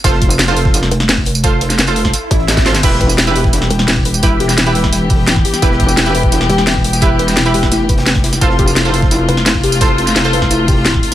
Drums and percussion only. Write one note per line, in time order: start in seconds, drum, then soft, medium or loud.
0.04 kick loud
0.04 closed hi-hat loud
0.04 tambourine medium
0.13 snare soft
0.21 kick loud
0.21 closed hi-hat medium
0.30 closed hi-hat soft
0.30 tambourine medium
0.39 snare loud
0.39 closed hi-hat loud
0.39 closed hi-hat medium
0.39 tambourine medium
0.48 tambourine soft
0.57 closed hi-hat medium
0.57 open hi-hat medium
0.65 kick loud
0.65 snare soft
0.74 closed hi-hat medium
0.74 closed hi-hat loud
0.74 tambourine medium
0.83 snare medium
0.83 snare soft
0.91 closed hi-hat medium
1.00 snare soft
1.00 closed hi-hat soft
1.08 snare loud
1.08 closed hi-hat medium
1.08 closed hi-hat loud
1.08 tambourine medium
1.18 kick medium
1.25 closed hi-hat medium
1.25 open hi-hat medium
1.35 tambourine medium
1.43 kick loud
1.43 closed hi-hat medium
1.43 closed hi-hat loud
1.43 tambourine medium
1.61 closed hi-hat medium
1.70 snare soft
1.70 closed hi-hat soft
1.70 tambourine medium
1.78 snare loud
1.78 closed hi-hat medium
1.78 closed hi-hat loud
1.78 tambourine medium
1.87 tambourine soft
1.96 closed hi-hat medium
1.96 open hi-hat medium
2.04 kick medium
2.04 snare soft
2.13 closed hi-hat medium
2.13 closed hi-hat loud
2.13 tambourine medium
2.31 kick loud
2.31 closed hi-hat medium
2.31 tambourine soft
2.40 closed hi-hat soft
2.48 snare loud
2.48 snare medium
2.48 closed hi-hat medium
2.48 closed hi-hat loud
2.48 tambourine medium
2.57 kick loud
2.57 snare medium
2.57 snare loud
2.57 closed hi-hat medium
2.57 tambourine soft
2.65 snare loud
2.65 snare medium
2.65 closed hi-hat medium
2.65 open hi-hat medium
2.65 tambourine soft
2.74 snare loud
2.74 snare medium
2.74 closed hi-hat medium
2.74 tambourine medium
2.83 kick loud
2.83 closed hi-hat loud
2.83 closed hi-hat medium
2.83 crash medium
2.83 tambourine soft
2.92 snare medium
3.01 kick loud
3.01 closed hi-hat medium
3.09 closed hi-hat soft
3.09 tambourine medium
3.18 snare loud
3.18 closed hi-hat loud
3.18 tambourine medium
3.27 tambourine soft
3.36 closed hi-hat medium
3.36 open hi-hat medium
3.44 kick loud
3.44 snare soft
3.53 closed hi-hat loud
3.53 tambourine soft
3.62 snare soft
3.70 closed hi-hat medium
3.79 snare soft
3.79 closed hi-hat soft
3.87 snare loud
3.87 closed hi-hat loud
3.87 closed hi-hat medium
3.87 tambourine medium
3.97 kick medium
4.05 closed hi-hat medium
4.05 open hi-hat medium
4.14 tambourine medium
4.22 kick loud
4.22 closed hi-hat medium
4.22 closed hi-hat loud
4.22 tambourine soft
4.40 closed hi-hat medium
4.49 snare soft
4.49 closed hi-hat soft
4.49 tambourine medium
4.57 snare loud
4.57 closed hi-hat medium
4.57 closed hi-hat loud
4.57 tambourine soft
4.66 tambourine soft
4.75 closed hi-hat medium
4.75 open hi-hat medium
4.84 kick medium
4.84 snare soft
4.84 snare medium
4.93 closed hi-hat medium
4.93 tambourine soft
5.09 kick loud
5.09 closed hi-hat medium
5.09 open hi-hat medium
5.09 tambourine soft
5.27 snare loud
5.27 closed hi-hat medium
5.27 closed hi-hat loud
5.27 tambourine soft
5.36 kick loud
5.36 snare soft
5.45 closed hi-hat medium
5.45 open hi-hat medium
5.53 snare soft
5.53 tambourine medium
5.62 kick loud
5.62 closed hi-hat medium
5.62 tambourine soft
5.71 snare soft
5.80 kick loud
5.80 closed hi-hat medium
5.88 closed hi-hat soft
5.88 tambourine medium
5.97 snare loud
5.97 closed hi-hat medium
5.97 tambourine soft
6.06 tambourine soft
6.15 closed hi-hat medium
6.15 open hi-hat medium
6.23 kick loud
6.32 closed hi-hat medium
6.32 tambourine soft
6.40 snare medium
6.40 snare soft
6.50 closed hi-hat medium
6.58 snare soft
6.58 closed hi-hat soft
6.67 snare loud
6.67 closed hi-hat loud
6.67 closed hi-hat medium
6.67 tambourine soft
6.76 kick medium
6.84 closed hi-hat medium
6.84 open hi-hat medium
6.93 snare medium
6.93 tambourine medium
7.01 kick loud
7.01 closed hi-hat medium
7.01 tambourine soft
7.19 closed hi-hat medium
7.28 snare soft
7.28 closed hi-hat soft
7.28 tambourine medium
7.37 snare loud
7.37 closed hi-hat loud
7.37 closed hi-hat medium
7.37 tambourine medium
7.45 tambourine soft
7.54 closed hi-hat medium
7.54 open hi-hat medium
7.63 kick medium
7.63 snare soft
7.71 snare loud
7.71 closed hi-hat medium
7.71 tambourine soft
7.89 kick loud
7.89 closed hi-hat medium
7.89 tambourine soft
7.98 snare loud
7.98 closed hi-hat medium
8.07 snare loud
8.07 closed hi-hat medium
8.07 tambourine soft
8.15 kick loud
8.15 snare soft
8.15 closed hi-hat medium
8.24 snare medium
8.24 closed hi-hat medium
8.24 open hi-hat medium
8.33 snare soft
8.33 tambourine medium
8.41 kick loud
8.41 closed hi-hat medium
8.41 tambourine soft
8.50 snare medium
8.59 kick loud
8.59 closed hi-hat medium
8.67 closed hi-hat soft
8.67 tambourine medium
8.76 snare loud
8.76 closed hi-hat medium
8.76 tambourine medium
8.85 tambourine soft
8.93 closed hi-hat medium
8.93 open hi-hat medium
9.02 kick loud
9.02 snare soft
9.11 closed hi-hat medium
9.11 closed hi-hat loud
9.11 tambourine medium
9.29 closed hi-hat medium
9.37 snare soft
9.37 closed hi-hat soft
9.46 snare loud
9.46 closed hi-hat medium
9.46 tambourine medium
9.55 kick medium
9.63 closed hi-hat medium
9.63 open hi-hat medium
9.72 snare medium
9.72 tambourine medium
9.81 kick loud
9.81 closed hi-hat medium
9.81 tambourine medium
9.98 closed hi-hat medium
10.07 snare soft
10.07 tambourine medium
10.16 snare loud
10.16 closed hi-hat medium
10.16 tambourine medium
10.25 tambourine soft
10.33 closed hi-hat medium
10.33 open hi-hat medium
10.42 kick medium
10.42 snare soft
10.50 closed hi-hat medium
10.50 tambourine medium
10.68 kick loud
10.68 closed hi-hat medium
10.68 open hi-hat medium
10.68 tambourine soft
10.85 snare loud
10.85 closed hi-hat medium
10.85 tambourine medium
10.94 kick loud
10.94 snare soft
11.03 closed hi-hat medium
11.03 open hi-hat medium